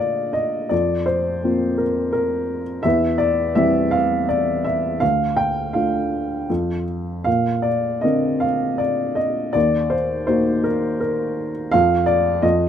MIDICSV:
0, 0, Header, 1, 2, 480
1, 0, Start_track
1, 0, Key_signature, -2, "major"
1, 0, Tempo, 720288
1, 476, Time_signature, 3, 2, 24, 8
1, 3827, Tempo, 761421
1, 6227, Tempo, 735294
1, 7187, Tempo, 709220
1, 8316, End_track
2, 0, Start_track
2, 0, Title_t, "Upright piano"
2, 0, Program_c, 0, 0
2, 0, Control_c, 0, 64, 127
2, 0, Note_on_c, 0, 46, 53
2, 0, Note_on_c, 0, 50, 34
2, 0, Note_on_c, 0, 58, 39
2, 0, Note_on_c, 0, 65, 42
2, 0, Note_on_c, 0, 74, 70
2, 0, Note_on_c, 0, 75, 68
2, 0, Note_on_c, 0, 77, 67
2, 221, Note_off_c, 0, 75, 0
2, 221, Note_on_c, 0, 75, 70
2, 235, Note_off_c, 0, 74, 0
2, 448, Note_off_c, 0, 58, 0
2, 449, Note_off_c, 0, 46, 0
2, 449, Note_off_c, 0, 50, 0
2, 451, Note_off_c, 0, 65, 0
2, 463, Note_on_c, 0, 74, 74
2, 475, Note_on_c, 0, 41, 60
2, 478, Note_off_c, 0, 75, 0
2, 485, Control_c, 0, 64, 0
2, 489, Note_off_c, 0, 77, 0
2, 617, Control_c, 0, 64, 127
2, 695, Note_off_c, 0, 74, 0
2, 706, Note_on_c, 0, 72, 75
2, 959, Note_on_c, 0, 58, 44
2, 959, Note_on_c, 0, 60, 40
2, 964, Note_on_c, 0, 65, 49
2, 1185, Note_on_c, 0, 70, 66
2, 1201, Note_off_c, 0, 72, 0
2, 1406, Note_off_c, 0, 70, 0
2, 1416, Note_on_c, 0, 70, 77
2, 1749, Note_off_c, 0, 70, 0
2, 1869, Note_off_c, 0, 41, 0
2, 1871, Note_off_c, 0, 58, 0
2, 1871, Note_off_c, 0, 60, 0
2, 1873, Note_off_c, 0, 65, 0
2, 1884, Note_on_c, 0, 76, 86
2, 1901, Note_on_c, 0, 40, 61
2, 1906, Control_c, 0, 64, 0
2, 2010, Control_c, 0, 64, 127
2, 2119, Note_on_c, 0, 74, 85
2, 2134, Note_off_c, 0, 76, 0
2, 2350, Note_off_c, 0, 74, 0
2, 2368, Note_on_c, 0, 76, 86
2, 2372, Note_on_c, 0, 55, 43
2, 2374, Note_on_c, 0, 60, 39
2, 2377, Note_on_c, 0, 52, 47
2, 2606, Note_on_c, 0, 77, 86
2, 2622, Note_off_c, 0, 76, 0
2, 2835, Note_off_c, 0, 77, 0
2, 2856, Note_on_c, 0, 74, 75
2, 3095, Note_on_c, 0, 76, 76
2, 3104, Note_off_c, 0, 74, 0
2, 3311, Note_off_c, 0, 55, 0
2, 3312, Note_off_c, 0, 60, 0
2, 3313, Note_off_c, 0, 52, 0
2, 3314, Note_off_c, 0, 40, 0
2, 3333, Note_on_c, 0, 77, 86
2, 3345, Note_off_c, 0, 76, 0
2, 3346, Control_c, 0, 64, 0
2, 3346, Note_on_c, 0, 38, 60
2, 3473, Control_c, 0, 64, 127
2, 3576, Note_on_c, 0, 79, 79
2, 3585, Note_off_c, 0, 77, 0
2, 3821, Note_on_c, 0, 77, 70
2, 3826, Note_on_c, 0, 57, 41
2, 3830, Note_off_c, 0, 79, 0
2, 3831, Note_on_c, 0, 62, 37
2, 3835, Note_on_c, 0, 65, 43
2, 4280, Note_off_c, 0, 38, 0
2, 4287, Note_off_c, 0, 57, 0
2, 4290, Note_off_c, 0, 62, 0
2, 4292, Note_off_c, 0, 65, 0
2, 4303, Note_on_c, 0, 41, 55
2, 4309, Control_c, 0, 64, 0
2, 4419, Control_c, 0, 64, 127
2, 4518, Note_off_c, 0, 77, 0
2, 4773, Note_on_c, 0, 77, 82
2, 4774, Note_off_c, 0, 41, 0
2, 4785, Note_on_c, 0, 46, 56
2, 4796, Control_c, 0, 64, 0
2, 4895, Control_c, 0, 64, 127
2, 5013, Note_on_c, 0, 74, 74
2, 5032, Note_off_c, 0, 77, 0
2, 5258, Note_on_c, 0, 75, 72
2, 5274, Note_off_c, 0, 74, 0
2, 5274, Note_on_c, 0, 50, 38
2, 5274, Note_on_c, 0, 60, 38
2, 5279, Note_on_c, 0, 70, 45
2, 5502, Note_on_c, 0, 77, 75
2, 5517, Note_off_c, 0, 75, 0
2, 5742, Note_on_c, 0, 74, 75
2, 5756, Note_off_c, 0, 77, 0
2, 5977, Note_on_c, 0, 75, 72
2, 5992, Note_off_c, 0, 74, 0
2, 6200, Note_off_c, 0, 46, 0
2, 6201, Note_off_c, 0, 50, 0
2, 6201, Note_off_c, 0, 60, 0
2, 6203, Note_off_c, 0, 70, 0
2, 6213, Note_on_c, 0, 74, 86
2, 6226, Note_on_c, 0, 39, 63
2, 6227, Note_off_c, 0, 75, 0
2, 6236, Control_c, 0, 64, 0
2, 6343, Control_c, 0, 64, 127
2, 6455, Note_on_c, 0, 72, 77
2, 6469, Note_off_c, 0, 74, 0
2, 6684, Note_off_c, 0, 72, 0
2, 6696, Note_on_c, 0, 72, 78
2, 6702, Note_on_c, 0, 58, 44
2, 6703, Note_on_c, 0, 63, 40
2, 6708, Note_on_c, 0, 66, 47
2, 6937, Note_on_c, 0, 70, 75
2, 6948, Note_off_c, 0, 72, 0
2, 7166, Note_off_c, 0, 70, 0
2, 7176, Note_on_c, 0, 70, 77
2, 7519, Note_off_c, 0, 70, 0
2, 7637, Note_off_c, 0, 58, 0
2, 7637, Note_off_c, 0, 63, 0
2, 7640, Note_off_c, 0, 39, 0
2, 7640, Note_off_c, 0, 66, 0
2, 7657, Note_on_c, 0, 77, 103
2, 7671, Note_on_c, 0, 41, 72
2, 7676, Control_c, 0, 64, 0
2, 7794, Control_c, 0, 64, 127
2, 7880, Note_off_c, 0, 77, 0
2, 7892, Note_on_c, 0, 74, 88
2, 8129, Note_off_c, 0, 41, 0
2, 8136, Note_on_c, 0, 75, 87
2, 8139, Note_on_c, 0, 41, 68
2, 8146, Note_off_c, 0, 74, 0
2, 8152, Control_c, 0, 64, 0
2, 8290, Control_c, 0, 64, 127
2, 8316, Note_off_c, 0, 41, 0
2, 8316, Note_off_c, 0, 75, 0
2, 8316, End_track
0, 0, End_of_file